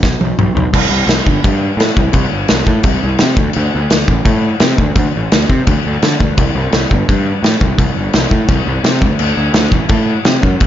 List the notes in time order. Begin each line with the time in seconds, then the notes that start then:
0.03 B1, kick, snare
0.21 B1, high tom
0.39 B1, mid tom
0.55 B1, floor tom
0.73 C2, kick, crash
0.89 C2
1.07 C2, snare, crash
1.26 G1, kick
1.44 G2, kick, crash
1.77 A2, snare, crash
1.97 C2, kick
2.13 C2, kick, crash
2.32 G1
2.48 C2, snare, crash
2.67 A2, kick
2.83 C2, kick, crash
3.03 C2
3.18 C3, snare, crash
3.37 D2, kick
3.53 D2, crash
3.75 D2
3.90 D2, snare, crash
4.08 A1, kick
4.25 A2, kick, crash
4.60 C3, snare, crash
4.78 D2, kick
4.95 D2, kick, crash
5.16 A1
5.32 D2, snare, crash
5.49 C3, kick
5.67 D2, kick, crash
5.85 D2
6.02 D3, snare, crash
6.20 D2, kick
6.37 C2, kick, crash
6.55 C2
6.72 C2, snare, crash
6.91 G1, kick
7.09 G2, kick, crash
7.43 A2, snare, crash
7.61 C2, kick
7.78 C2, kick, crash
7.97 G1
8.13 C2, snare, crash
8.31 A2, kick
8.48 C2, kick, crash
8.67 C2
8.83 C3, snare, crash
9.02 D2, kick
9.19 D2, crash
9.37 D2
9.53 D2, snare, crash
9.71 A1, kick
9.89 A2, kick, crash
10.25 C3, snare, crash
10.43 F#2, kick
10.60 E1, kick, crash